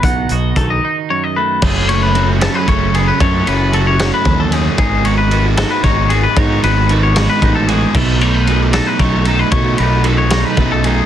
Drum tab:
CC |------|x-----|------|------|
RD |------|-xxxxx|xxxxxx|xxxxxx|
HH |xxx---|------|------|------|
SD |------|---o--|---o--|---o--|
BD |o-o---|o---o-|o---o-|o---o-|

CC |------|x-----|------|
RD |xxxxxx|-xxxxx|xxxxxx|
HH |------|------|------|
SD |---o--|---o--|---o--|
BD |o---o-|o---o-|o---o-|